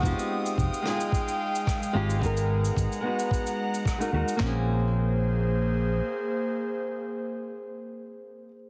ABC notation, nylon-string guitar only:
X:1
M:4/4
L:1/16
Q:1/4=110
K:Bbm
V:1 name="Nylon-string guitar"
[A,CEF=G]6 [A,CEFA]6- [A,CEFA] z [A,CEFG]2 | [A,_CEGB]6 [A,CEG_c]6- [A,CEGc] [A,CEGB] [A,CEGB]2 | [B,CDFA]16- | [B,CDFA]16 |]